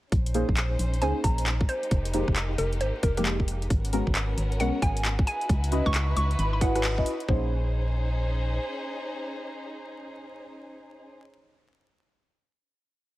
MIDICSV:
0, 0, Header, 1, 6, 480
1, 0, Start_track
1, 0, Key_signature, -5, "minor"
1, 0, Tempo, 447761
1, 130, Time_signature, 4, 2, 24, 8
1, 14127, End_track
2, 0, Start_track
2, 0, Title_t, "Synth pluck"
2, 0, Program_c, 0, 84
2, 1089, Note_on_c, 0, 80, 89
2, 1298, Note_off_c, 0, 80, 0
2, 1327, Note_on_c, 0, 82, 87
2, 1791, Note_off_c, 0, 82, 0
2, 1809, Note_on_c, 0, 72, 92
2, 2202, Note_off_c, 0, 72, 0
2, 2768, Note_on_c, 0, 70, 94
2, 2978, Note_off_c, 0, 70, 0
2, 3009, Note_on_c, 0, 72, 84
2, 3232, Note_off_c, 0, 72, 0
2, 3248, Note_on_c, 0, 70, 87
2, 3347, Note_off_c, 0, 70, 0
2, 3402, Note_on_c, 0, 70, 74
2, 3458, Note_off_c, 0, 70, 0
2, 4930, Note_on_c, 0, 78, 85
2, 5138, Note_off_c, 0, 78, 0
2, 5170, Note_on_c, 0, 80, 92
2, 5633, Note_off_c, 0, 80, 0
2, 5650, Note_on_c, 0, 80, 92
2, 6043, Note_off_c, 0, 80, 0
2, 6282, Note_on_c, 0, 85, 93
2, 6467, Note_off_c, 0, 85, 0
2, 6610, Note_on_c, 0, 85, 93
2, 6819, Note_off_c, 0, 85, 0
2, 6848, Note_on_c, 0, 83, 87
2, 6947, Note_off_c, 0, 83, 0
2, 7002, Note_on_c, 0, 83, 78
2, 7058, Note_off_c, 0, 83, 0
2, 7088, Note_on_c, 0, 78, 95
2, 7482, Note_off_c, 0, 78, 0
2, 14127, End_track
3, 0, Start_track
3, 0, Title_t, "Synth stab"
3, 0, Program_c, 1, 62
3, 369, Note_on_c, 1, 58, 92
3, 370, Note_on_c, 1, 61, 88
3, 370, Note_on_c, 1, 63, 83
3, 370, Note_on_c, 1, 68, 84
3, 370, Note_on_c, 1, 72, 107
3, 522, Note_off_c, 1, 58, 0
3, 522, Note_off_c, 1, 61, 0
3, 522, Note_off_c, 1, 63, 0
3, 522, Note_off_c, 1, 68, 0
3, 522, Note_off_c, 1, 72, 0
3, 1090, Note_on_c, 1, 58, 73
3, 1090, Note_on_c, 1, 61, 72
3, 1090, Note_on_c, 1, 63, 70
3, 1090, Note_on_c, 1, 68, 70
3, 1090, Note_on_c, 1, 72, 83
3, 1799, Note_off_c, 1, 61, 0
3, 1799, Note_off_c, 1, 72, 0
3, 1800, Note_off_c, 1, 58, 0
3, 1800, Note_off_c, 1, 63, 0
3, 1800, Note_off_c, 1, 68, 0
3, 2289, Note_on_c, 1, 56, 83
3, 2289, Note_on_c, 1, 58, 78
3, 2289, Note_on_c, 1, 63, 78
3, 2289, Note_on_c, 1, 67, 95
3, 2290, Note_on_c, 1, 53, 89
3, 2494, Note_off_c, 1, 53, 0
3, 2494, Note_off_c, 1, 56, 0
3, 2494, Note_off_c, 1, 58, 0
3, 2494, Note_off_c, 1, 63, 0
3, 2494, Note_off_c, 1, 67, 0
3, 3402, Note_on_c, 1, 58, 72
3, 3402, Note_on_c, 1, 63, 68
3, 3402, Note_on_c, 1, 67, 86
3, 3403, Note_on_c, 1, 53, 77
3, 3403, Note_on_c, 1, 56, 70
3, 3959, Note_off_c, 1, 53, 0
3, 3959, Note_off_c, 1, 56, 0
3, 3959, Note_off_c, 1, 58, 0
3, 3959, Note_off_c, 1, 63, 0
3, 3959, Note_off_c, 1, 67, 0
3, 4209, Note_on_c, 1, 56, 96
3, 4209, Note_on_c, 1, 59, 87
3, 4209, Note_on_c, 1, 61, 87
3, 4209, Note_on_c, 1, 70, 110
3, 4210, Note_on_c, 1, 66, 87
3, 4362, Note_off_c, 1, 56, 0
3, 4362, Note_off_c, 1, 59, 0
3, 4362, Note_off_c, 1, 61, 0
3, 4362, Note_off_c, 1, 66, 0
3, 4362, Note_off_c, 1, 70, 0
3, 4930, Note_on_c, 1, 59, 71
3, 4930, Note_on_c, 1, 66, 70
3, 4931, Note_on_c, 1, 56, 77
3, 4931, Note_on_c, 1, 61, 70
3, 4931, Note_on_c, 1, 70, 85
3, 5639, Note_off_c, 1, 59, 0
3, 5640, Note_off_c, 1, 56, 0
3, 5640, Note_off_c, 1, 61, 0
3, 5640, Note_off_c, 1, 66, 0
3, 5640, Note_off_c, 1, 70, 0
3, 6129, Note_on_c, 1, 66, 81
3, 6130, Note_on_c, 1, 61, 88
3, 6130, Note_on_c, 1, 64, 82
3, 6130, Note_on_c, 1, 71, 80
3, 6130, Note_on_c, 1, 75, 100
3, 6334, Note_off_c, 1, 66, 0
3, 6335, Note_off_c, 1, 61, 0
3, 6335, Note_off_c, 1, 64, 0
3, 6335, Note_off_c, 1, 71, 0
3, 6335, Note_off_c, 1, 75, 0
3, 7089, Note_on_c, 1, 61, 96
3, 7089, Note_on_c, 1, 64, 90
3, 7089, Note_on_c, 1, 66, 90
3, 7089, Note_on_c, 1, 71, 91
3, 7090, Note_on_c, 1, 75, 110
3, 7206, Note_off_c, 1, 61, 0
3, 7206, Note_off_c, 1, 64, 0
3, 7206, Note_off_c, 1, 66, 0
3, 7206, Note_off_c, 1, 71, 0
3, 7206, Note_off_c, 1, 75, 0
3, 7242, Note_on_c, 1, 61, 95
3, 7242, Note_on_c, 1, 64, 85
3, 7242, Note_on_c, 1, 66, 85
3, 7242, Note_on_c, 1, 71, 84
3, 7242, Note_on_c, 1, 78, 104
3, 7445, Note_off_c, 1, 61, 0
3, 7446, Note_off_c, 1, 64, 0
3, 7446, Note_off_c, 1, 66, 0
3, 7446, Note_off_c, 1, 71, 0
3, 7446, Note_off_c, 1, 78, 0
3, 7481, Note_on_c, 1, 61, 98
3, 7481, Note_on_c, 1, 64, 89
3, 7481, Note_on_c, 1, 66, 87
3, 7481, Note_on_c, 1, 71, 89
3, 7481, Note_on_c, 1, 75, 106
3, 7660, Note_off_c, 1, 61, 0
3, 7660, Note_off_c, 1, 64, 0
3, 7660, Note_off_c, 1, 66, 0
3, 7660, Note_off_c, 1, 71, 0
3, 7660, Note_off_c, 1, 75, 0
3, 7808, Note_on_c, 1, 58, 87
3, 7808, Note_on_c, 1, 63, 75
3, 7808, Note_on_c, 1, 72, 93
3, 7809, Note_on_c, 1, 61, 80
3, 7809, Note_on_c, 1, 68, 80
3, 11925, Note_off_c, 1, 58, 0
3, 11925, Note_off_c, 1, 61, 0
3, 11925, Note_off_c, 1, 63, 0
3, 11925, Note_off_c, 1, 68, 0
3, 11925, Note_off_c, 1, 72, 0
3, 14127, End_track
4, 0, Start_track
4, 0, Title_t, "Violin section"
4, 0, Program_c, 2, 48
4, 127, Note_on_c, 2, 56, 70
4, 127, Note_on_c, 2, 61, 75
4, 127, Note_on_c, 2, 72, 84
4, 128, Note_on_c, 2, 63, 71
4, 1792, Note_off_c, 2, 61, 0
4, 1792, Note_off_c, 2, 72, 0
4, 1809, Note_on_c, 2, 58, 77
4, 1809, Note_on_c, 2, 67, 73
4, 3930, Note_off_c, 2, 56, 0
4, 3930, Note_off_c, 2, 63, 0
4, 3948, Note_off_c, 2, 58, 0
4, 3948, Note_off_c, 2, 67, 0
4, 3968, Note_on_c, 2, 59, 80
4, 3968, Note_on_c, 2, 61, 76
4, 3968, Note_on_c, 2, 66, 72
4, 3969, Note_on_c, 2, 70, 88
4, 5632, Note_off_c, 2, 59, 0
4, 5632, Note_off_c, 2, 61, 0
4, 5632, Note_off_c, 2, 70, 0
4, 5648, Note_on_c, 2, 64, 71
4, 5649, Note_on_c, 2, 63, 75
4, 5649, Note_on_c, 2, 71, 87
4, 7770, Note_off_c, 2, 66, 0
4, 7787, Note_off_c, 2, 64, 0
4, 7788, Note_off_c, 2, 63, 0
4, 7788, Note_off_c, 2, 71, 0
4, 7808, Note_on_c, 2, 72, 86
4, 7809, Note_on_c, 2, 61, 79
4, 7809, Note_on_c, 2, 63, 75
4, 7810, Note_on_c, 2, 68, 73
4, 11925, Note_off_c, 2, 61, 0
4, 11925, Note_off_c, 2, 72, 0
4, 11926, Note_off_c, 2, 63, 0
4, 11926, Note_off_c, 2, 68, 0
4, 14127, End_track
5, 0, Start_track
5, 0, Title_t, "FM bass"
5, 0, Program_c, 3, 39
5, 129, Note_on_c, 3, 34, 95
5, 472, Note_off_c, 3, 34, 0
5, 522, Note_on_c, 3, 34, 95
5, 821, Note_off_c, 3, 34, 0
5, 849, Note_on_c, 3, 34, 77
5, 1090, Note_on_c, 3, 37, 80
5, 1106, Note_off_c, 3, 34, 0
5, 1211, Note_off_c, 3, 37, 0
5, 1330, Note_on_c, 3, 34, 89
5, 1781, Note_off_c, 3, 34, 0
5, 2050, Note_on_c, 3, 29, 97
5, 2392, Note_off_c, 3, 29, 0
5, 2443, Note_on_c, 3, 29, 94
5, 2741, Note_off_c, 3, 29, 0
5, 2770, Note_on_c, 3, 29, 79
5, 3011, Note_on_c, 3, 32, 75
5, 3027, Note_off_c, 3, 29, 0
5, 3132, Note_off_c, 3, 32, 0
5, 3249, Note_on_c, 3, 29, 84
5, 3941, Note_off_c, 3, 29, 0
5, 3970, Note_on_c, 3, 32, 97
5, 4312, Note_off_c, 3, 32, 0
5, 4363, Note_on_c, 3, 32, 91
5, 4661, Note_off_c, 3, 32, 0
5, 4690, Note_on_c, 3, 32, 75
5, 4929, Note_on_c, 3, 35, 77
5, 4945, Note_off_c, 3, 32, 0
5, 5051, Note_off_c, 3, 35, 0
5, 5170, Note_on_c, 3, 32, 87
5, 5621, Note_off_c, 3, 32, 0
5, 5890, Note_on_c, 3, 37, 98
5, 6232, Note_off_c, 3, 37, 0
5, 6282, Note_on_c, 3, 37, 96
5, 6581, Note_off_c, 3, 37, 0
5, 6609, Note_on_c, 3, 37, 81
5, 6814, Note_off_c, 3, 37, 0
5, 6848, Note_on_c, 3, 32, 97
5, 7540, Note_off_c, 3, 32, 0
5, 7809, Note_on_c, 3, 34, 91
5, 9207, Note_off_c, 3, 34, 0
5, 14127, End_track
6, 0, Start_track
6, 0, Title_t, "Drums"
6, 129, Note_on_c, 9, 36, 114
6, 130, Note_on_c, 9, 42, 61
6, 236, Note_off_c, 9, 36, 0
6, 237, Note_off_c, 9, 42, 0
6, 282, Note_on_c, 9, 42, 65
6, 369, Note_on_c, 9, 46, 106
6, 389, Note_off_c, 9, 42, 0
6, 476, Note_off_c, 9, 46, 0
6, 522, Note_on_c, 9, 36, 60
6, 609, Note_on_c, 9, 39, 109
6, 609, Note_on_c, 9, 42, 61
6, 629, Note_off_c, 9, 36, 0
6, 716, Note_off_c, 9, 39, 0
6, 716, Note_off_c, 9, 42, 0
6, 850, Note_on_c, 9, 46, 98
6, 957, Note_off_c, 9, 46, 0
6, 1003, Note_on_c, 9, 42, 36
6, 1090, Note_off_c, 9, 42, 0
6, 1090, Note_on_c, 9, 42, 62
6, 1197, Note_off_c, 9, 42, 0
6, 1329, Note_on_c, 9, 36, 105
6, 1330, Note_on_c, 9, 46, 107
6, 1437, Note_off_c, 9, 36, 0
6, 1437, Note_off_c, 9, 46, 0
6, 1482, Note_on_c, 9, 42, 65
6, 1570, Note_off_c, 9, 42, 0
6, 1570, Note_on_c, 9, 39, 111
6, 1570, Note_on_c, 9, 42, 62
6, 1677, Note_off_c, 9, 39, 0
6, 1677, Note_off_c, 9, 42, 0
6, 1722, Note_on_c, 9, 36, 101
6, 1810, Note_on_c, 9, 46, 91
6, 1830, Note_off_c, 9, 36, 0
6, 1917, Note_off_c, 9, 46, 0
6, 1963, Note_on_c, 9, 42, 36
6, 2049, Note_off_c, 9, 42, 0
6, 2049, Note_on_c, 9, 42, 61
6, 2050, Note_on_c, 9, 36, 116
6, 2156, Note_off_c, 9, 42, 0
6, 2157, Note_off_c, 9, 36, 0
6, 2202, Note_on_c, 9, 42, 62
6, 2289, Note_on_c, 9, 37, 31
6, 2289, Note_on_c, 9, 46, 104
6, 2309, Note_off_c, 9, 42, 0
6, 2396, Note_off_c, 9, 37, 0
6, 2396, Note_off_c, 9, 46, 0
6, 2442, Note_on_c, 9, 36, 63
6, 2442, Note_on_c, 9, 37, 51
6, 2529, Note_on_c, 9, 39, 116
6, 2529, Note_on_c, 9, 42, 57
6, 2549, Note_off_c, 9, 37, 0
6, 2550, Note_off_c, 9, 36, 0
6, 2636, Note_off_c, 9, 39, 0
6, 2636, Note_off_c, 9, 42, 0
6, 2769, Note_on_c, 9, 46, 92
6, 2876, Note_off_c, 9, 46, 0
6, 2922, Note_on_c, 9, 42, 36
6, 3008, Note_off_c, 9, 42, 0
6, 3008, Note_on_c, 9, 42, 61
6, 3116, Note_off_c, 9, 42, 0
6, 3248, Note_on_c, 9, 46, 102
6, 3249, Note_on_c, 9, 36, 109
6, 3355, Note_off_c, 9, 46, 0
6, 3357, Note_off_c, 9, 36, 0
6, 3402, Note_on_c, 9, 37, 70
6, 3402, Note_on_c, 9, 42, 66
6, 3489, Note_off_c, 9, 42, 0
6, 3489, Note_on_c, 9, 39, 117
6, 3489, Note_on_c, 9, 42, 60
6, 3509, Note_off_c, 9, 37, 0
6, 3596, Note_off_c, 9, 39, 0
6, 3596, Note_off_c, 9, 42, 0
6, 3642, Note_on_c, 9, 36, 61
6, 3729, Note_on_c, 9, 46, 90
6, 3750, Note_off_c, 9, 36, 0
6, 3836, Note_off_c, 9, 46, 0
6, 3882, Note_on_c, 9, 42, 36
6, 3970, Note_off_c, 9, 42, 0
6, 3970, Note_on_c, 9, 36, 121
6, 3970, Note_on_c, 9, 42, 61
6, 4077, Note_off_c, 9, 36, 0
6, 4077, Note_off_c, 9, 42, 0
6, 4124, Note_on_c, 9, 42, 61
6, 4211, Note_on_c, 9, 46, 102
6, 4231, Note_off_c, 9, 42, 0
6, 4318, Note_off_c, 9, 46, 0
6, 4362, Note_on_c, 9, 36, 62
6, 4451, Note_on_c, 9, 39, 121
6, 4451, Note_on_c, 9, 42, 60
6, 4470, Note_off_c, 9, 36, 0
6, 4558, Note_off_c, 9, 39, 0
6, 4558, Note_off_c, 9, 42, 0
6, 4691, Note_on_c, 9, 46, 88
6, 4798, Note_off_c, 9, 46, 0
6, 4845, Note_on_c, 9, 42, 35
6, 4931, Note_off_c, 9, 42, 0
6, 4931, Note_on_c, 9, 42, 61
6, 5039, Note_off_c, 9, 42, 0
6, 5169, Note_on_c, 9, 36, 108
6, 5171, Note_on_c, 9, 46, 98
6, 5276, Note_off_c, 9, 36, 0
6, 5278, Note_off_c, 9, 46, 0
6, 5324, Note_on_c, 9, 42, 62
6, 5412, Note_off_c, 9, 42, 0
6, 5412, Note_on_c, 9, 39, 124
6, 5412, Note_on_c, 9, 42, 60
6, 5519, Note_off_c, 9, 39, 0
6, 5519, Note_off_c, 9, 42, 0
6, 5562, Note_on_c, 9, 36, 114
6, 5651, Note_on_c, 9, 46, 82
6, 5669, Note_off_c, 9, 36, 0
6, 5758, Note_off_c, 9, 46, 0
6, 5803, Note_on_c, 9, 42, 34
6, 5889, Note_on_c, 9, 36, 122
6, 5892, Note_off_c, 9, 42, 0
6, 5892, Note_on_c, 9, 42, 61
6, 5996, Note_off_c, 9, 36, 0
6, 5999, Note_off_c, 9, 42, 0
6, 6044, Note_on_c, 9, 42, 62
6, 6130, Note_on_c, 9, 37, 30
6, 6130, Note_on_c, 9, 46, 100
6, 6151, Note_off_c, 9, 42, 0
6, 6237, Note_off_c, 9, 37, 0
6, 6237, Note_off_c, 9, 46, 0
6, 6282, Note_on_c, 9, 36, 66
6, 6283, Note_on_c, 9, 37, 52
6, 6370, Note_on_c, 9, 39, 115
6, 6370, Note_on_c, 9, 42, 63
6, 6389, Note_off_c, 9, 36, 0
6, 6390, Note_off_c, 9, 37, 0
6, 6477, Note_off_c, 9, 39, 0
6, 6477, Note_off_c, 9, 42, 0
6, 6609, Note_on_c, 9, 46, 93
6, 6717, Note_off_c, 9, 46, 0
6, 6762, Note_on_c, 9, 42, 36
6, 6848, Note_off_c, 9, 42, 0
6, 6848, Note_on_c, 9, 42, 61
6, 6956, Note_off_c, 9, 42, 0
6, 7089, Note_on_c, 9, 36, 107
6, 7089, Note_on_c, 9, 46, 98
6, 7196, Note_off_c, 9, 36, 0
6, 7196, Note_off_c, 9, 46, 0
6, 7242, Note_on_c, 9, 37, 67
6, 7242, Note_on_c, 9, 42, 65
6, 7328, Note_off_c, 9, 42, 0
6, 7328, Note_on_c, 9, 39, 120
6, 7328, Note_on_c, 9, 42, 63
6, 7349, Note_off_c, 9, 37, 0
6, 7436, Note_off_c, 9, 39, 0
6, 7436, Note_off_c, 9, 42, 0
6, 7482, Note_on_c, 9, 36, 65
6, 7569, Note_on_c, 9, 46, 84
6, 7589, Note_off_c, 9, 36, 0
6, 7676, Note_off_c, 9, 46, 0
6, 7722, Note_on_c, 9, 42, 35
6, 7809, Note_on_c, 9, 36, 102
6, 7829, Note_off_c, 9, 42, 0
6, 7916, Note_off_c, 9, 36, 0
6, 14127, End_track
0, 0, End_of_file